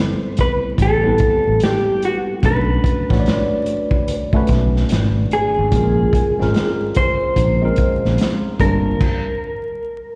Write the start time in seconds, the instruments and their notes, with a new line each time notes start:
Already playing: tine electric piano G3 A3 B3 C4 E4 A4 B4
0.37 clean electric guitar B4, kick, closed hi-hat
0.78 fretless electric bass A1, kick, closed hi-hat
0.82 clean electric guitar A4
1.03 tine electric piano G3 B3 C4 E4 B4
1.18 kick, closed hi-hat
1.47 fretless electric bass A1
1.60 clean electric guitar G4, snare, closed hi-hat
2.02 clean electric guitar F#4, closed hi-hat
2.42 fretless electric bass B1, tine electric piano A3 C#4 D4 F#4 B4, clean electric guitar B4, kick, closed hi-hat
2.84 kick, closed hi-hat
3.09 fretless electric bass A1, tine electric piano A3 D4 F#4 C#5, kick, snare
3.20 tine electric piano D5
3.26 snare, closed hi-hat
3.66 closed hi-hat
3.91 kick
4.08 closed hi-hat
4.33 tine electric piano A3 C#4 D4 F#4 B4, muted fretless electric bass stroke, kick
4.47 fretless electric bass B1, kick, closed hi-hat
4.52 snare
4.76 snare
4.89 fretless electric bass G#1, snare, closed hi-hat
5.31 clean electric guitar G#4, closed hi-hat
5.58 fretless electric bass G#1
5.72 fretless electric bass A#1, tine electric piano G#3 C4 C#4 F4, kick, closed hi-hat
5.76 tine electric piano A#4
6.13 kick, closed hi-hat
6.39 fretless electric bass G#1, tine electric piano G#3 C4 C#4 F4 A#4, snare
6.54 snare, closed hi-hat
6.95 clean electric guitar C5, kick, closed hi-hat
7.36 fretless electric bass A#1, kick, closed hi-hat
7.62 tine electric piano G#3 C4 C#4 F4 A#4
7.76 kick, closed hi-hat
8.05 fretless electric bass A#1, snare
8.18 snare, closed hi-hat
8.60 fretless electric bass G1, tine electric piano G3 A#3 D4 F4 A5, clean electric guitar A#4, kick, closed hi-hat
9.01 kick, crash